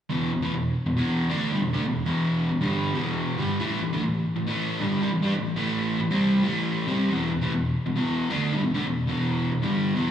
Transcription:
0.10 0.32 E2 medium
0.10 0.32 B2 medium
0.10 0.32 E3 loud
0.33 0.44 E2 medium
0.33 0.42 B2 medium
0.42 0.53 A2 medium
0.42 0.54 E3 loud
0.53 0.71 E2 medium
0.53 0.72 B2 medium
0.86 0.96 E2 medium
0.86 0.96 B2 medium
0.97 1.29 E2 medium
0.97 1.29 B2 medium
0.97 1.30 E3 loud
1.29 1.51 D3 medium
1.29 1.52 A3 loud
1.29 1.52 D4 loud
1.52 1.62 G2 medium
1.52 1.62 D3 loud
1.62 1.74 E2 medium
1.62 1.73 B2 medium
1.74 1.84 D3 medium
1.74 1.85 A3 medium
1.85 2.03 E2 medium
1.85 2.03 B2 medium
2.06 2.50 E2 medium
2.06 2.50 B2 medium
2.06 2.50 E3 medium
2.51 2.61 E2 medium
2.51 2.61 B2 medium
2.61 2.93 G2 medium
2.61 2.94 D3 medium
2.61 2.94 G3 medium
2.95 3.37 E2 medium
2.95 3.38 B2 loud
2.95 3.38 E3 medium
3.38 3.59 G2 medium
3.38 3.59 D3 loud
3.38 3.60 G3 loud
3.60 3.81 A2 loud
3.60 3.81 E3 loud
3.60 3.81 A3 loud
3.83 3.93 A2 medium
3.83 3.93 E3 medium
3.93 4.03 D3 medium
3.93 4.03 A3 medium
4.04 4.21 A2 medium
4.04 4.21 E3 medium
4.36 4.45 A2 medium
4.36 4.46 E3 medium
4.47 4.79 A2 medium
4.47 4.79 E3 loud
4.47 4.80 A3 loud
4.79 5.01 G2 medium
4.79 5.00 D3 medium
4.79 5.00 G3 loud
5.01 5.11 C3 medium
5.01 5.12 G3 loud
5.12 5.23 A2 medium
5.12 5.22 E3 medium
5.22 5.33 G3 medium
5.22 5.34 D4 medium
5.35 5.52 A2 medium
5.35 5.52 E3 medium
5.56 5.99 A2 medium
5.56 5.99 E3 medium
5.56 6.00 A3 loud
6.00 6.10 A2 medium
6.00 6.11 E3 medium
6.11 6.43 C3 medium
6.11 6.43 G3 loud
6.11 6.44 C4 medium
6.43 6.87 A2 medium
6.43 6.87 E3 loud
6.43 6.88 A3 loud
6.87 7.09 C3 medium
6.87 7.09 G3 medium
6.87 7.10 C4 loud
7.10 7.30 E2 medium
7.10 7.31 B2 medium
7.10 7.32 E3 loud
7.31 7.43 E2 medium
7.31 7.41 B2 medium
7.42 7.53 A2 medium
7.42 7.53 E3 loud
7.53 7.71 E2 medium
7.53 7.71 B2 medium
7.86 7.94 E2 medium
7.86 7.95 B2 medium
7.96 8.29 E2 loud
7.96 8.29 B2 loud
7.96 8.30 E3 medium
8.30 8.52 D3 medium
8.30 8.52 A3 medium
8.30 8.52 D4 loud
8.52 8.63 G2 loud
8.52 8.63 D3 loud
8.63 8.74 E2 medium
8.63 8.74 B2 medium
8.74 8.85 D3 medium
8.74 8.85 A3 loud
8.86 9.03 E2 medium
8.86 9.04 B2 medium
9.07 9.50 E2 medium
9.07 9.51 B2 loud
9.07 9.51 E3 loud
9.52 9.62 E2 medium
9.52 9.63 B2 medium
9.62 9.95 G2 medium
9.62 9.95 D3 medium
9.62 9.95 G3 loud
9.95 10.11 E2 loud
9.95 10.11 B2 loud
9.95 10.11 E3 loud

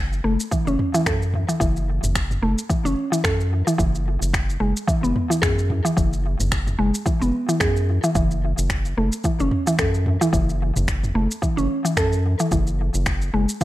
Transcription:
0.00 0.21 F#1 medium
0.13 shaker soft
0.24 0.37 F#1 loud
0.24 0.39 A3 medium
0.40 shaker medium
0.51 0.66 E3 medium
0.51 kick medium
0.51 shaker medium
0.67 0.77 F#1 loud
0.67 0.93 C#4 medium
0.67 shaker soft
0.79 mid tom medium
0.94 1.05 E3 loud
0.94 shaker medium
1.06 1.45 F#2 medium
1.06 1.21 A4 loud
1.06 finger snap medium
1.06 kick loud
1.06 shaker medium
1.22 shaker soft
1.34 mid tom medium
1.49 1.55 E3 medium
1.49 shaker medium
1.60 1.99 F#1 medium
1.60 1.75 E3 loud
1.60 kick loud
1.60 shaker medium
1.76 shaker soft
2.03 2.39 F#1 medium
2.03 mid tom medium
2.03 shaker medium
2.15 finger snap loud
2.15 kick loud
2.15 shaker medium
2.31 mid tom medium
2.31 shaker soft
2.42 2.55 F#1 loud
2.42 2.57 A3 medium
2.58 shaker medium
2.69 2.84 E3 medium
2.69 kick loud
2.69 shaker medium
2.85 2.95 F#1 loud
2.85 3.11 C#4 medium
2.85 shaker soft
3.12 3.23 E3 loud
3.12 shaker medium
3.24 3.63 F#2 loud
3.24 3.39 A4 loud
3.24 finger snap loud
3.24 kick loud
3.24 shaker medium
3.40 shaker soft
3.67 3.74 E3 medium
3.67 shaker medium
3.78 4.17 F#1 loud
3.78 3.93 E3 loud
3.78 kick loud
3.78 shaker medium
3.95 shaker soft
4.21 4.57 F#1 medium
4.21 shaker medium
4.33 finger snap loud
4.33 kick loud
4.33 shaker medium
4.50 shaker soft
4.60 4.73 F#1 loud
4.60 4.75 G#3 medium
4.77 shaker medium
4.88 5.02 E3 loud
4.88 kick loud
4.88 shaker medium
5.03 5.13 F#1 loud
5.03 5.29 B3 medium
5.03 shaker soft
5.16 mid tom medium
5.30 5.41 E3 medium
5.30 shaker medium
5.42 5.81 F#2 medium
5.42 5.57 G#4 loud
5.42 finger snap medium
5.42 kick loud
5.42 shaker medium
5.59 shaker soft
5.70 mid tom medium
5.85 5.92 E3 loud
5.85 shaker medium
5.97 6.36 F#1 medium
5.97 6.12 E3 medium
5.97 kick loud
5.97 shaker medium
6.13 shaker soft
6.40 6.76 F#1 medium
6.40 mid tom medium
6.40 shaker medium
6.52 finger snap loud
6.52 kick loud
6.52 shaker medium
6.67 mid tom medium
6.67 shaker soft
6.79 6.92 F#1 loud
6.79 6.93 G#3 medium
6.94 shaker medium
7.06 7.21 E3 medium
7.06 kick loud
7.06 shaker medium
7.22 7.32 F#1 loud
7.22 7.47 B3 medium
7.22 shaker soft
7.49 7.59 E3 medium
7.49 shaker medium
7.60 7.99 F#2 medium
7.60 7.75 G#4 loud
7.60 finger snap medium
7.60 kick loud
7.60 shaker medium
7.76 shaker soft
8.04 8.10 E3 loud
8.04 shaker medium
8.15 8.54 F#1 medium
8.15 8.30 E3 loud
8.15 kick loud
8.15 shaker medium
8.31 shaker soft
8.58 8.94 F#1 medium
8.58 shaker medium
8.70 finger snap loud
8.70 kick loud
8.70 shaker medium
8.85 shaker soft
8.97 9.10 F#1 loud
8.97 9.12 A3 medium
9.12 shaker medium
9.24 9.39 E3 loud
9.24 kick medium
9.24 shaker medium
9.40 9.50 F#1 loud
9.40 9.66 C#4 medium
9.40 shaker soft
9.51 mid tom medium
9.67 9.78 E3 loud
9.67 shaker medium
9.79 10.17 F#2 medium
9.79 9.94 A4 loud
9.79 finger snap medium
9.79 kick loud
9.79 shaker medium
9.94 shaker soft
10.06 mid tom medium
10.21 10.28 E3 loud
10.21 shaker medium
10.33 10.72 F#1 loud
10.33 10.48 E3 loud
10.33 kick loud
10.33 shaker medium
10.49 shaker soft
10.76 11.12 F#1 medium
10.76 mid tom medium
10.76 shaker medium
10.88 finger snap loud
10.88 kick loud
10.88 shaker medium
11.04 mid tom medium
11.04 shaker soft
11.14 11.28 F#1 loud
11.14 11.30 A3 medium
11.31 shaker medium
11.42 11.57 E3 medium
11.42 kick loud
11.42 shaker medium
11.57 11.68 F#1 loud
11.57 11.83 C#4 medium
11.57 shaker soft
11.85 11.96 E3 medium
11.85 shaker medium
11.97 12.35 F#2 medium
11.97 12.12 A4 loud
11.97 finger snap medium
11.97 kick medium
11.97 shaker medium
12.13 shaker soft
12.40 12.47 E3 loud
12.40 shaker medium
12.51 12.90 F#1 loud
12.51 12.66 E3 loud
12.51 kick medium
12.51 shaker medium
12.67 shaker soft
12.94 13.30 F#1 medium
12.94 shaker medium
13.06 finger snap loud
13.06 kick loud
13.06 shaker medium
13.22 shaker soft
13.34 13.46 F#1 loud
13.34 13.48 G#3 medium
13.49 shaker medium
13.61 kick medium
13.61 shaker medium

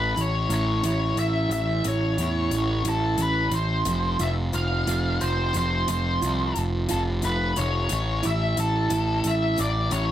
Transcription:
0.00 0.13 A1 medium
0.00 1.51 A2 medium
0.00 0.20 B4 medium
0.16 0.47 A1 medium
0.16 0.84 E4 medium
0.16 closed hi-hat medium
0.21 0.53 C#5 medium
0.49 0.80 A1 medium
0.49 1.16 C#4 medium
0.49 closed hi-hat soft
0.54 0.86 C#5 medium
0.84 1.14 A1 medium
0.84 2.17 E4 medium
0.84 1.19 C#5 medium
0.84 closed hi-hat medium
1.16 1.47 A1 medium
1.16 2.50 C#4 medium
1.16 1.50 E5 medium
1.16 closed hi-hat medium
1.50 1.81 A1 medium
1.50 3.19 E3 medium
1.50 1.83 E5 medium
1.50 closed hi-hat medium
1.84 2.15 A1 medium
1.84 3.53 A2 medium
1.84 2.90 C#5 medium
1.84 closed hi-hat medium
2.18 2.48 E2 medium
2.18 2.84 E4 medium
2.18 closed hi-hat medium
2.51 2.82 A1 medium
2.51 3.18 C#4 medium
2.51 closed hi-hat medium
2.85 3.15 A1 medium
2.85 3.86 E4 medium
2.85 closed hi-hat medium
2.89 3.22 A4 medium
3.18 3.49 A1 medium
3.18 3.86 C#4 medium
3.18 closed hi-hat medium
3.22 3.52 B4 medium
3.51 3.82 A1 medium
3.51 3.86 E3 medium
3.51 4.23 C5 medium
3.51 closed hi-hat medium
3.85 4.16 F1 medium
3.85 5.54 F2 medium
3.85 closed hi-hat medium
4.19 4.50 F1 medium
4.19 4.86 F4 medium
4.19 4.30 E5 medium
4.19 closed hi-hat medium
4.52 4.84 F1 medium
4.52 5.19 C4 medium
4.52 5.23 F5 medium
4.52 closed hi-hat medium
4.87 5.18 F1 medium
4.87 6.20 F4 medium
4.87 closed hi-hat medium
5.20 5.52 F1 medium
5.20 6.88 C4 medium
5.20 5.56 C5 medium
5.20 closed hi-hat soft
5.53 5.85 F1 medium
5.53 7.22 F3 medium
5.53 closed hi-hat medium
5.57 5.88 C5 medium
5.87 6.18 F1 medium
5.87 7.56 F2 medium
5.87 6.60 C5 medium
5.87 closed hi-hat medium
6.21 6.52 C2 medium
6.21 6.87 F4 medium
6.21 closed hi-hat medium
6.56 6.86 F1 medium
6.56 closed hi-hat medium
6.89 7.21 F1 medium
6.89 7.89 F4 medium
6.89 7.00 A4 medium
6.89 closed hi-hat medium
7.22 7.53 F1 medium
7.22 7.58 B4 medium
7.22 closed hi-hat medium
7.56 7.87 F1 medium
7.56 7.89 F3 medium
7.56 8.26 C#5 medium
7.56 closed hi-hat medium
7.89 8.21 A1 medium
7.89 9.58 A2 medium
7.89 closed hi-hat medium
8.23 8.55 A1 medium
8.23 8.89 E4 medium
8.23 8.56 E5 medium
8.23 closed hi-hat medium
8.57 8.87 A1 medium
8.57 9.27 A4 medium
8.57 closed hi-hat medium
8.90 9.21 A1 medium
8.90 10.12 E4 medium
8.90 closed hi-hat medium
9.24 9.55 A1 medium
9.24 9.60 E5 medium
9.24 closed hi-hat medium
9.56 9.89 A1 medium
9.56 10.12 E3 medium
9.56 closed hi-hat medium
9.60 9.92 D5 medium
9.91 10.12 A1 medium
9.91 10.12 A2 medium
9.91 10.12 C#5 medium
9.91 closed hi-hat medium

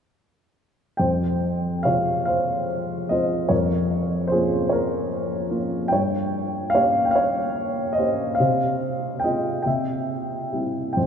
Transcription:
0.97 3.48 F2 soft
0.97 1.82 C5 soft
0.97 1.87 G5 medium
1.83 2.67 C3 soft
1.83 2.66 G#3 soft
1.83 2.67 F4 soft
1.83 2.25 C#5 soft
1.83 2.24 F5 medium
2.25 3.07 C5 soft
2.25 3.12 F5 medium
3.09 3.50 G#3 soft
3.09 3.50 C4 soft
3.09 3.50 F4 soft
3.09 3.49 C5 soft
3.09 3.52 D#5 medium
3.49 5.87 F2 soft
3.49 4.28 A#4 soft
3.49 4.27 C#5 medium
4.28 4.66 C5 medium
4.32 5.08 A#3 soft
4.32 5.08 C#4 soft
4.32 5.09 F4 soft
4.32 4.69 G#4 medium
4.69 5.58 A#4 soft
4.69 5.56 C#5 medium
5.50 5.90 A#3 soft
5.50 5.90 C#4 soft
5.50 5.90 F4 soft
5.88 8.36 G2 soft
5.88 6.75 G5 medium
5.93 6.71 C#5 medium
6.70 7.08 F5 medium
6.75 7.55 A#3 soft
6.75 7.55 C#4 soft
6.75 7.55 G4 soft
6.75 7.07 C#5 medium
7.05 7.14 G5 medium
7.11 7.99 F5 medium
7.16 7.94 C#5 medium
7.93 8.38 D#5 medium
7.98 8.38 A#3 soft
7.98 8.39 C#4 soft
7.98 8.39 G4 soft
7.98 8.36 C5 soft
8.35 9.23 F5 medium
8.39 9.63 C3 soft
8.39 9.19 C5 soft
9.20 9.65 G#3 soft
9.20 9.61 G5 medium
9.24 9.66 C4 soft
9.24 9.65 F4 soft
9.24 9.64 D#5 soft
9.62 10.93 C3 soft
9.62 10.58 G5 medium
9.67 10.61 E5 soft
10.52 10.96 G3 soft
10.52 10.96 C4 soft
10.52 10.96 E4 soft
10.93 11.06 G5 medium
10.97 11.06 F2 soft
10.97 11.06 C5 soft

